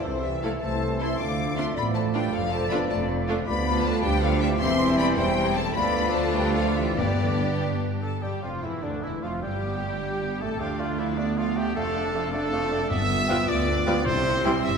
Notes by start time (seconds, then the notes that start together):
Already playing: E3 E5
0.03 C2 C3 E4 A4 C5
0.23 E3 G4 E5
0.42 F3 A3 E4 A4 F5
0.61 C2 A3 C5 A5
1.00 A3 C4 E4 A4 E5 C6
1.18 D2 F3 D4 D5 F5 D6
1.56 A3 C4 D4 F4 E5 C6
1.75 A1 A2 B3 D5 B5
1.94 A3 C5 A5
2.13 G3 A3 D4 F4 B4 G5
2.31 F1 F2 F3 A4 F5
2.49 A3 C5 A5
2.69 A3 B3 D4 F4 D5 B5
2.89 F1 F2 A3 D5 A5
3.27 A3 D4 F4
3.46 D2 F3 B3 G4 D5 B5
3.65 G3 D4 F4
3.82 A3 C5 A5
4.01 D2 G3 B4 G5
4.21 F3 G3 D4 F4 A4 F5
4.40 E3 G4 E5
4.59 E1 E2 E3 G3 C4 E4 C5 E5 C6
4.79 G3 C4 E4
4.97 B3 D5 B5
5.17 E1 E2 G3 C5 G5
5.37 G3 C4 E4
5.54 A3 C5 A5
5.74 D2 F3 A3 B3 D4 F4 A4 D5 B5
6.13 A3 C5 A5
6.34 G3 B4 G5
6.55 F3 A4 F5
6.76 E3 G4 E5
6.97 G1 G2 D3 G3 B3 D4 G4 B4 D5
8.02 A4 A5
8.21 G1 G2 G3 G4 G5
8.42 F1 F2 F3 F4 F5
8.62 E1 E2 E3 E4 E5
8.82 D2 D3 A3 D4 D5
9.02 E1 E2 E3 E4 E5
9.22 F1 F2 F3 F4 F5
9.41 G1 G2 G3 G4 G5
9.63 B3
9.83 A3
10.02 G3
10.22 B3
10.41 A1 A2 A3 C4 A4 A5
10.60 D2 F3 A3 D4 F4 G4 D5 F5 G5
10.79 A3 D4 F4 D5 F5
10.98 F3 A3 E4 F4 D5 E5 F5
11.16 A3 B3 D4 D5 F5
11.36 F3 A3 F4 D5 F5
11.56 A3 D4 G4 D5 F5 G5
11.75 F1 F2 F3 A3 F4 A4 D5 F5 A5
11.95 A3 D4 D5 F5
12.14 F3 A3 C4 F4 D5 F5
12.33 A3 D4 A4 D5 F5 A5
12.51 F3 A3 F4 D5 F5
12.71 A3 C4 D4 D5 F5
12.91 G1 G2 B3 F4 E5 E6
13.28 F3 G3 F4 B4 G5
13.48 D2 B3 D5 D6
13.68 D4
13.86 F3 G3 B3 F4 B4 G5
14.05 C2 C3 G3 C4 E4 C5 C6
14.44 E3 G3 E4 C5 G5
14.64 G1 G2 E5 E6